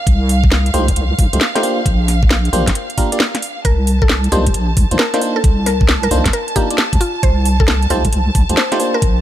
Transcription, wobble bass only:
0.07 0.70 C2 loud
0.74 0.92 C2 medium
0.96 1.14 C2 medium
1.19 1.29 C2 medium
1.33 1.39 C2 medium
1.86 2.49 A#1 loud
2.53 2.71 A#1 medium
3.65 4.28 C2 loud
4.32 4.50 C2 medium
4.54 4.78 A#1 medium
4.77 4.87 C2 medium
4.91 4.97 C2 medium
5.44 6.07 C2 loud
6.11 6.29 C2 medium
6.93 6.98 D#2 medium
7.23 7.86 C2 loud
7.90 8.08 C2 medium
8.13 8.30 C2 medium
8.35 8.45 C2 medium
8.49 8.55 C2 medium
9.02 9.21 A#1 loud

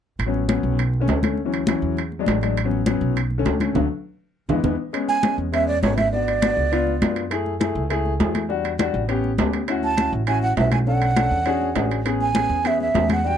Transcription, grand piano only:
0.26 0.42 F#3 medium
0.26 0.42 B3 medium
0.26 0.43 C#4 medium
0.48 0.78 F#3 medium
0.48 0.79 B3 medium
0.48 0.79 C#4 medium
1.00 1.16 D3 medium
1.00 1.16 A3 medium
1.00 1.17 C#4 medium
1.23 1.38 D3 medium
1.23 1.38 A3 medium
1.23 1.38 C#4 medium
1.45 1.61 E3 medium
1.45 1.61 F#3 medium
1.45 1.61 C#4 medium
1.67 1.97 E3 medium
1.67 1.97 F#3 medium
1.67 1.98 C#4 medium
2.19 2.35 F#3 medium
2.19 2.35 G#3 medium
2.19 2.36 D4 medium
2.42 2.57 F#3 medium
2.42 2.57 G#3 medium
2.42 2.57 D4 medium
2.64 2.80 F#3 medium
2.64 2.80 B3 medium
2.64 2.81 C#4 medium
2.86 3.16 F#3 medium
2.86 3.16 B3 medium
2.86 3.17 C#4 medium
3.38 3.54 D3 medium
3.38 3.54 A3 medium
3.38 3.54 C#4 medium
3.60 3.74 D3 medium
3.60 3.74 A3 medium
3.60 3.76 C#4 medium
3.76 3.85 D3 medium
3.76 3.85 F#3 medium
3.76 3.85 A3 medium
4.50 4.59 E3 medium
4.50 4.59 G#3 medium
4.50 4.59 B3 medium
4.64 4.74 E3 medium
4.64 4.74 G#3 medium
4.64 4.74 B3 medium
4.93 5.14 G#3 medium
4.93 5.15 B3 medium
4.93 5.15 C#4 medium
5.23 5.44 G#3 medium
5.23 5.44 B3 medium
5.23 5.45 C#4 medium
5.52 5.74 G#3 medium
5.52 5.74 B3 medium
5.52 5.74 C#4 medium
5.82 6.03 G#3 medium
5.82 6.04 B3 medium
5.82 6.04 C#4 medium
6.12 6.33 B3 medium
6.12 6.34 D4 medium
6.12 6.34 F#4 medium
6.42 6.63 B3 medium
6.42 6.63 D4 medium
6.42 6.63 F#4 medium
6.72 6.93 B3 medium
6.72 6.93 D4 medium
6.72 6.93 F4 medium
7.02 7.22 B3 medium
7.02 7.23 D4 medium
7.02 7.23 F4 medium
7.30 7.52 A3 medium
7.30 7.52 E4 medium
7.30 7.52 G#4 medium
7.60 7.81 A3 medium
7.60 7.81 E4 medium
7.60 7.82 G#4 medium
7.90 8.11 A3 medium
7.90 8.11 E4 medium
7.90 8.12 G#4 loud
8.20 8.41 A3 medium
8.20 8.41 E4 medium
8.20 8.41 G#4 medium
8.49 8.70 G3 medium
8.49 8.70 D4 medium
8.49 8.71 F#4 medium
8.79 9.00 G3 medium
8.79 9.00 D4 medium
8.79 9.01 F#4 medium
9.08 9.29 B3 medium
9.08 9.30 C#4 medium
9.08 9.30 G4 loud
9.38 9.59 B3 medium
9.38 9.60 C#4 medium
9.38 9.60 G4 medium
9.68 9.89 C#4 medium
9.68 9.89 E4 medium
9.68 9.90 F#4 medium
9.98 10.19 C#4 medium
9.98 10.19 E4 medium
9.98 10.19 F#4 medium
10.27 10.48 C#4 medium
10.27 10.48 E4 medium
10.27 10.49 F#4 medium
10.57 10.78 C#4 medium
10.57 10.78 E4 medium
10.57 10.78 F#4 medium
10.87 11.08 C#4 medium
10.87 11.08 D4 medium
10.87 11.08 A4 medium
11.16 11.37 C#4 medium
11.16 11.37 D4 medium
11.16 11.38 A4 medium
11.46 11.67 C#4 medium
11.46 11.67 D4 medium
11.46 11.67 F#4 medium
11.46 11.68 G#4 loud
11.75 11.96 C#4 medium
11.75 11.97 D4 medium
11.75 11.97 F#4 medium
11.75 11.97 G#4 medium
12.05 12.26 B3 medium
12.05 12.26 C#4 medium
12.05 12.27 G#4 medium
12.35 12.56 B3 medium
12.35 12.56 C#4 medium
12.35 12.57 G#4 medium
12.64 12.86 B3 medium
12.64 12.86 C#4 medium
12.64 12.86 G#4 medium
12.94 13.15 B3 medium
12.94 13.15 C#4 medium
12.94 13.16 G#4 medium
13.24 13.38 G3 medium
13.24 13.38 D4 medium
13.24 13.38 F#4 medium

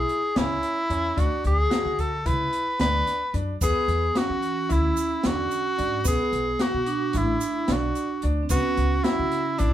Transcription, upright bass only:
0.36 0.57 C#2 medium
0.90 1.10 E2 medium
1.18 1.28 D2 medium
1.45 1.65 D2 medium
1.85 2.28 D3 medium
2.26 2.47 C#2 medium
2.80 3.01 D2 medium
3.34 3.54 F#2 medium
3.61 3.72 E2 medium
3.88 4.09 E2 medium
4.29 4.72 E3 medium
4.70 4.91 D2 medium
5.25 5.45 E2 medium
5.79 5.99 G#2 medium
6.05 6.16 B1 medium
6.32 6.53 B1 medium
6.74 7.16 B2 medium
7.14 7.35 A1 medium
7.68 7.89 B1 medium
8.23 8.44 D2 medium
8.50 8.60 C#2 medium
8.77 8.98 C#2 medium
9.19 9.61 C#3 medium
9.60 9.73 B1 medium

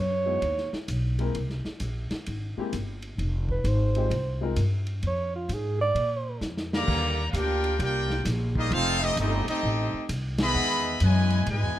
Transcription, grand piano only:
0.26 0.41 G#3 medium
0.26 0.41 B3 medium
0.26 0.41 D#4 medium
0.26 0.41 E4 medium
0.26 0.41 F#4 medium
1.19 1.33 G#3 medium
1.19 1.33 A#3 medium
1.19 1.33 C4 medium
1.19 1.34 E4 medium
1.19 1.34 A#4 medium
2.58 2.72 G#3 medium
2.58 2.72 A#3 medium
2.58 2.72 C4 medium
2.58 2.72 E4 medium
2.58 2.73 G4 medium
3.96 4.10 G#3 medium
3.96 4.10 C4 medium
3.96 4.10 D#4 medium
3.96 4.11 F4 medium
3.96 4.11 G4 medium
4.41 4.56 G#3 medium
4.41 4.56 C4 medium
4.41 4.56 D#4 medium
4.41 4.56 F4 medium
4.41 4.57 A#4 medium

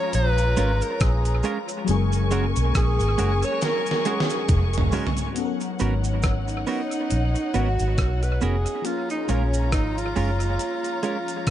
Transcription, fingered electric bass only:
0.15 0.54 A#1 loud
0.58 0.80 G#1 medium
1.01 1.41 A#1 loud
1.89 2.53 F#1 loud
2.57 2.74 B1 medium
2.76 2.98 A#1 medium
3.01 3.17 G#1 medium
3.20 3.41 F#1 loud
4.50 4.89 F1 medium
5.81 6.64 G#1 medium
7.12 7.34 A#1 medium
7.55 7.77 G#1 medium
7.80 7.97 G#1 medium
7.99 8.38 B1 medium
8.43 8.64 F1 medium
9.29 9.73 A#1 medium
9.73 10.12 G#1 medium
10.17 10.56 F#1 medium

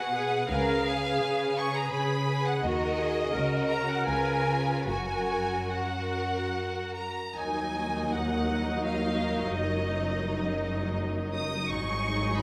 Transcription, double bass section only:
0.50 1.11 C#2 soft
2.63 3.30 D#2 soft
3.35 4.04 C#2 soft
4.07 4.84 C#2 soft
4.88 5.67 F#1 soft
7.35 9.51 D#2 soft
9.55 11.70 F#1 soft
11.70 12.42 G#1 soft

